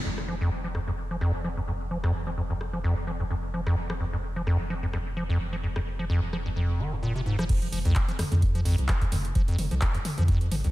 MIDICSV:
0, 0, Header, 1, 4, 480
1, 0, Start_track
1, 0, Key_signature, -4, "minor"
1, 0, Tempo, 465116
1, 52, Time_signature, 4, 2, 24, 8
1, 11058, End_track
2, 0, Start_track
2, 0, Title_t, "Acid bass"
2, 0, Program_c, 0, 38
2, 52, Note_on_c, 0, 41, 77
2, 95, Note_off_c, 0, 41, 0
2, 292, Note_on_c, 0, 53, 69
2, 364, Note_off_c, 0, 53, 0
2, 423, Note_on_c, 0, 41, 99
2, 512, Note_off_c, 0, 41, 0
2, 663, Note_on_c, 0, 53, 72
2, 699, Note_off_c, 0, 53, 0
2, 771, Note_on_c, 0, 41, 74
2, 815, Note_off_c, 0, 41, 0
2, 903, Note_on_c, 0, 41, 70
2, 939, Note_off_c, 0, 41, 0
2, 1143, Note_on_c, 0, 53, 74
2, 1203, Note_off_c, 0, 53, 0
2, 1250, Note_on_c, 0, 41, 99
2, 1359, Note_off_c, 0, 41, 0
2, 1490, Note_on_c, 0, 53, 84
2, 1534, Note_off_c, 0, 53, 0
2, 1621, Note_on_c, 0, 41, 75
2, 1658, Note_off_c, 0, 41, 0
2, 1730, Note_on_c, 0, 41, 75
2, 1774, Note_off_c, 0, 41, 0
2, 1969, Note_on_c, 0, 53, 77
2, 2043, Note_off_c, 0, 53, 0
2, 2100, Note_on_c, 0, 41, 99
2, 2191, Note_off_c, 0, 41, 0
2, 2340, Note_on_c, 0, 53, 78
2, 2377, Note_off_c, 0, 53, 0
2, 2449, Note_on_c, 0, 41, 82
2, 2494, Note_off_c, 0, 41, 0
2, 2581, Note_on_c, 0, 41, 76
2, 2618, Note_off_c, 0, 41, 0
2, 2820, Note_on_c, 0, 53, 69
2, 2881, Note_off_c, 0, 53, 0
2, 2930, Note_on_c, 0, 41, 104
2, 3039, Note_off_c, 0, 41, 0
2, 3169, Note_on_c, 0, 53, 71
2, 3214, Note_off_c, 0, 53, 0
2, 3301, Note_on_c, 0, 41, 69
2, 3338, Note_off_c, 0, 41, 0
2, 3411, Note_on_c, 0, 41, 85
2, 3454, Note_off_c, 0, 41, 0
2, 3652, Note_on_c, 0, 53, 77
2, 3724, Note_off_c, 0, 53, 0
2, 3783, Note_on_c, 0, 41, 102
2, 3872, Note_off_c, 0, 41, 0
2, 4022, Note_on_c, 0, 53, 80
2, 4058, Note_off_c, 0, 53, 0
2, 4130, Note_on_c, 0, 41, 72
2, 4174, Note_off_c, 0, 41, 0
2, 4261, Note_on_c, 0, 41, 75
2, 4298, Note_off_c, 0, 41, 0
2, 4501, Note_on_c, 0, 53, 75
2, 4562, Note_off_c, 0, 53, 0
2, 4611, Note_on_c, 0, 41, 100
2, 4719, Note_off_c, 0, 41, 0
2, 4852, Note_on_c, 0, 53, 80
2, 4895, Note_off_c, 0, 53, 0
2, 4983, Note_on_c, 0, 41, 80
2, 5019, Note_off_c, 0, 41, 0
2, 5092, Note_on_c, 0, 41, 73
2, 5135, Note_off_c, 0, 41, 0
2, 5332, Note_on_c, 0, 53, 87
2, 5404, Note_off_c, 0, 53, 0
2, 5463, Note_on_c, 0, 41, 102
2, 5552, Note_off_c, 0, 41, 0
2, 5704, Note_on_c, 0, 53, 77
2, 5739, Note_off_c, 0, 53, 0
2, 5811, Note_on_c, 0, 41, 79
2, 5855, Note_off_c, 0, 41, 0
2, 5944, Note_on_c, 0, 41, 75
2, 5979, Note_off_c, 0, 41, 0
2, 6184, Note_on_c, 0, 53, 74
2, 6243, Note_off_c, 0, 53, 0
2, 6292, Note_on_c, 0, 41, 99
2, 6400, Note_off_c, 0, 41, 0
2, 6532, Note_on_c, 0, 53, 77
2, 6575, Note_off_c, 0, 53, 0
2, 6665, Note_on_c, 0, 41, 72
2, 6700, Note_off_c, 0, 41, 0
2, 6772, Note_on_c, 0, 41, 83
2, 7013, Note_on_c, 0, 51, 76
2, 7028, Note_off_c, 0, 41, 0
2, 7143, Note_on_c, 0, 41, 72
2, 7158, Note_off_c, 0, 51, 0
2, 7179, Note_off_c, 0, 41, 0
2, 7252, Note_on_c, 0, 46, 87
2, 7360, Note_off_c, 0, 46, 0
2, 7385, Note_on_c, 0, 48, 76
2, 7443, Note_off_c, 0, 48, 0
2, 7493, Note_on_c, 0, 44, 78
2, 7600, Note_off_c, 0, 44, 0
2, 7624, Note_on_c, 0, 53, 104
2, 7683, Note_off_c, 0, 53, 0
2, 7732, Note_on_c, 0, 41, 79
2, 7775, Note_off_c, 0, 41, 0
2, 7971, Note_on_c, 0, 53, 76
2, 8043, Note_off_c, 0, 53, 0
2, 8102, Note_on_c, 0, 41, 102
2, 8192, Note_off_c, 0, 41, 0
2, 8342, Note_on_c, 0, 53, 79
2, 8379, Note_off_c, 0, 53, 0
2, 8451, Note_on_c, 0, 41, 78
2, 8495, Note_off_c, 0, 41, 0
2, 8583, Note_on_c, 0, 41, 72
2, 8619, Note_off_c, 0, 41, 0
2, 8823, Note_on_c, 0, 53, 75
2, 8883, Note_off_c, 0, 53, 0
2, 8930, Note_on_c, 0, 41, 101
2, 9039, Note_off_c, 0, 41, 0
2, 9171, Note_on_c, 0, 53, 90
2, 9214, Note_off_c, 0, 53, 0
2, 9302, Note_on_c, 0, 41, 78
2, 9338, Note_off_c, 0, 41, 0
2, 9412, Note_on_c, 0, 41, 79
2, 9455, Note_off_c, 0, 41, 0
2, 9652, Note_on_c, 0, 53, 83
2, 9724, Note_off_c, 0, 53, 0
2, 9783, Note_on_c, 0, 41, 104
2, 9872, Note_off_c, 0, 41, 0
2, 10023, Note_on_c, 0, 53, 76
2, 10059, Note_off_c, 0, 53, 0
2, 10131, Note_on_c, 0, 41, 86
2, 10175, Note_off_c, 0, 41, 0
2, 10262, Note_on_c, 0, 41, 80
2, 10298, Note_off_c, 0, 41, 0
2, 10503, Note_on_c, 0, 53, 75
2, 10563, Note_off_c, 0, 53, 0
2, 10612, Note_on_c, 0, 41, 102
2, 10720, Note_off_c, 0, 41, 0
2, 10851, Note_on_c, 0, 53, 77
2, 10895, Note_off_c, 0, 53, 0
2, 10983, Note_on_c, 0, 41, 73
2, 11019, Note_off_c, 0, 41, 0
2, 11058, End_track
3, 0, Start_track
3, 0, Title_t, "Sub bass"
3, 0, Program_c, 1, 38
3, 52, Note_on_c, 1, 29, 87
3, 7710, Note_off_c, 1, 29, 0
3, 7732, Note_on_c, 1, 29, 98
3, 7837, Note_off_c, 1, 29, 0
3, 7972, Note_on_c, 1, 29, 97
3, 8077, Note_off_c, 1, 29, 0
3, 8105, Note_on_c, 1, 36, 91
3, 8191, Note_off_c, 1, 36, 0
3, 8584, Note_on_c, 1, 41, 80
3, 8898, Note_off_c, 1, 41, 0
3, 8932, Note_on_c, 1, 32, 101
3, 9037, Note_off_c, 1, 32, 0
3, 9064, Note_on_c, 1, 36, 83
3, 9150, Note_off_c, 1, 36, 0
3, 9413, Note_on_c, 1, 29, 101
3, 9609, Note_off_c, 1, 29, 0
3, 9652, Note_on_c, 1, 29, 98
3, 9757, Note_off_c, 1, 29, 0
3, 9892, Note_on_c, 1, 29, 100
3, 9997, Note_off_c, 1, 29, 0
3, 10024, Note_on_c, 1, 36, 91
3, 10111, Note_off_c, 1, 36, 0
3, 10503, Note_on_c, 1, 41, 82
3, 10817, Note_off_c, 1, 41, 0
3, 10852, Note_on_c, 1, 32, 99
3, 10957, Note_off_c, 1, 32, 0
3, 10984, Note_on_c, 1, 36, 83
3, 11058, Note_off_c, 1, 36, 0
3, 11058, End_track
4, 0, Start_track
4, 0, Title_t, "Drums"
4, 184, Note_on_c, 9, 37, 74
4, 287, Note_off_c, 9, 37, 0
4, 772, Note_on_c, 9, 37, 61
4, 875, Note_off_c, 9, 37, 0
4, 1251, Note_on_c, 9, 37, 60
4, 1354, Note_off_c, 9, 37, 0
4, 2102, Note_on_c, 9, 37, 72
4, 2205, Note_off_c, 9, 37, 0
4, 2691, Note_on_c, 9, 37, 62
4, 2795, Note_off_c, 9, 37, 0
4, 3783, Note_on_c, 9, 37, 71
4, 3886, Note_off_c, 9, 37, 0
4, 4023, Note_on_c, 9, 37, 78
4, 4126, Note_off_c, 9, 37, 0
4, 4612, Note_on_c, 9, 37, 61
4, 4715, Note_off_c, 9, 37, 0
4, 5092, Note_on_c, 9, 37, 64
4, 5195, Note_off_c, 9, 37, 0
4, 5944, Note_on_c, 9, 37, 80
4, 6047, Note_off_c, 9, 37, 0
4, 6532, Note_on_c, 9, 37, 63
4, 6636, Note_off_c, 9, 37, 0
4, 7624, Note_on_c, 9, 37, 78
4, 7728, Note_off_c, 9, 37, 0
4, 7732, Note_on_c, 9, 36, 123
4, 7733, Note_on_c, 9, 42, 71
4, 7733, Note_on_c, 9, 49, 101
4, 7835, Note_off_c, 9, 36, 0
4, 7836, Note_off_c, 9, 42, 0
4, 7836, Note_off_c, 9, 49, 0
4, 7864, Note_on_c, 9, 42, 39
4, 7967, Note_off_c, 9, 42, 0
4, 7973, Note_on_c, 9, 46, 108
4, 8076, Note_off_c, 9, 46, 0
4, 8104, Note_on_c, 9, 42, 54
4, 8208, Note_off_c, 9, 42, 0
4, 8208, Note_on_c, 9, 39, 126
4, 8212, Note_on_c, 9, 36, 127
4, 8213, Note_on_c, 9, 42, 68
4, 8312, Note_off_c, 9, 39, 0
4, 8315, Note_off_c, 9, 36, 0
4, 8316, Note_off_c, 9, 42, 0
4, 8345, Note_on_c, 9, 42, 41
4, 8448, Note_off_c, 9, 42, 0
4, 8452, Note_on_c, 9, 37, 78
4, 8452, Note_on_c, 9, 46, 106
4, 8452, Note_on_c, 9, 47, 88
4, 8555, Note_off_c, 9, 37, 0
4, 8555, Note_off_c, 9, 46, 0
4, 8555, Note_off_c, 9, 47, 0
4, 8584, Note_on_c, 9, 42, 56
4, 8584, Note_on_c, 9, 47, 84
4, 8687, Note_off_c, 9, 42, 0
4, 8687, Note_off_c, 9, 47, 0
4, 8692, Note_on_c, 9, 36, 120
4, 8692, Note_on_c, 9, 42, 69
4, 8795, Note_off_c, 9, 36, 0
4, 8796, Note_off_c, 9, 42, 0
4, 8824, Note_on_c, 9, 42, 39
4, 8927, Note_off_c, 9, 42, 0
4, 8932, Note_on_c, 9, 46, 108
4, 9035, Note_off_c, 9, 46, 0
4, 9064, Note_on_c, 9, 42, 55
4, 9167, Note_off_c, 9, 42, 0
4, 9168, Note_on_c, 9, 39, 124
4, 9172, Note_on_c, 9, 36, 118
4, 9172, Note_on_c, 9, 42, 66
4, 9271, Note_off_c, 9, 39, 0
4, 9275, Note_off_c, 9, 36, 0
4, 9275, Note_off_c, 9, 42, 0
4, 9303, Note_on_c, 9, 36, 63
4, 9303, Note_on_c, 9, 42, 37
4, 9407, Note_off_c, 9, 36, 0
4, 9407, Note_off_c, 9, 42, 0
4, 9412, Note_on_c, 9, 46, 110
4, 9412, Note_on_c, 9, 47, 81
4, 9515, Note_off_c, 9, 46, 0
4, 9515, Note_off_c, 9, 47, 0
4, 9544, Note_on_c, 9, 42, 54
4, 9647, Note_off_c, 9, 42, 0
4, 9652, Note_on_c, 9, 36, 126
4, 9652, Note_on_c, 9, 42, 69
4, 9755, Note_off_c, 9, 36, 0
4, 9755, Note_off_c, 9, 42, 0
4, 9784, Note_on_c, 9, 42, 39
4, 9887, Note_off_c, 9, 42, 0
4, 9892, Note_on_c, 9, 46, 108
4, 9892, Note_on_c, 9, 47, 85
4, 9995, Note_off_c, 9, 46, 0
4, 9995, Note_off_c, 9, 47, 0
4, 10022, Note_on_c, 9, 42, 55
4, 10126, Note_off_c, 9, 42, 0
4, 10127, Note_on_c, 9, 39, 127
4, 10131, Note_on_c, 9, 42, 68
4, 10132, Note_on_c, 9, 36, 126
4, 10230, Note_off_c, 9, 39, 0
4, 10234, Note_off_c, 9, 42, 0
4, 10235, Note_off_c, 9, 36, 0
4, 10263, Note_on_c, 9, 42, 38
4, 10366, Note_off_c, 9, 42, 0
4, 10371, Note_on_c, 9, 46, 113
4, 10371, Note_on_c, 9, 47, 92
4, 10474, Note_off_c, 9, 46, 0
4, 10474, Note_off_c, 9, 47, 0
4, 10502, Note_on_c, 9, 42, 55
4, 10502, Note_on_c, 9, 47, 82
4, 10606, Note_off_c, 9, 42, 0
4, 10606, Note_off_c, 9, 47, 0
4, 10611, Note_on_c, 9, 36, 124
4, 10611, Note_on_c, 9, 42, 67
4, 10714, Note_off_c, 9, 42, 0
4, 10715, Note_off_c, 9, 36, 0
4, 10743, Note_on_c, 9, 42, 37
4, 10846, Note_off_c, 9, 42, 0
4, 10852, Note_on_c, 9, 46, 111
4, 10852, Note_on_c, 9, 47, 84
4, 10955, Note_off_c, 9, 46, 0
4, 10955, Note_off_c, 9, 47, 0
4, 10983, Note_on_c, 9, 42, 57
4, 11058, Note_off_c, 9, 42, 0
4, 11058, End_track
0, 0, End_of_file